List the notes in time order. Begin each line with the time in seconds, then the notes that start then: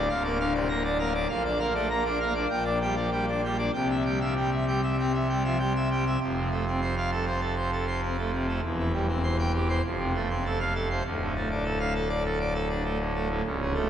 0.09 D1 D2 F5
0.24 A#3 D5
0.40 D3 F5
0.55 C3 D5
0.69 A#3 A#5
0.84 D4 D5
0.99 A#3 F5
1.15 D4 D5
1.29 A#1 A#2 F5
1.46 D4 D5
1.60 A#3 F5
1.75 A3 D5
1.90 A#3 A#5
2.06 D4 D5
2.20 A#3 F5
2.35 D4 D5
2.50 A#1 A#2 G5
2.65 D4 D5
2.82 G3 G5
2.97 F3 D5
3.12 G3 G5
3.28 D4 D5
3.44 G3 G5
3.59 D4 D5
3.74 C2 C3 G5
3.90 E5
4.05 G3 G5
4.21 F3 E5
4.37 G3 G5
4.52 E5
4.68 G3 G5
4.83 E5
4.99 C4 G5
5.14 E5
5.30 G3 G5
5.44 F3 E5
5.59 G3 G5
5.76 E5
5.91 G3 G5
6.07 E5
6.22 F1 F2
6.36 C3
6.51 A3
6.67 C4
6.82 C5
6.97 F5
7.12 A4
7.27 C5
7.41 A4
7.56 C5
7.72 A4
7.87 C5
8.03 C4
8.18 A3
8.33 C3
8.48 A3
8.62 E1 E2
8.79 E3
8.93 G3
9.08 C4
9.23 C5
9.39 G5
9.54 G4
9.69 C5
9.84 F1 F2
9.99 C3
10.15 A3
10.30 C4
10.45 A4
10.60 F5
10.75 A4
10.91 C5
11.06 D1 D2
11.21 A2
11.36 A3
11.51 D4
11.65 A4
11.80 F5
11.95 A4
12.10 D5
12.25 A4
12.40 D5
12.55 A4
12.70 D4
12.84 A3
12.99 A2
13.15 A3
13.30 A2
13.45 C#1 C#2
13.61 C#3
13.74 A3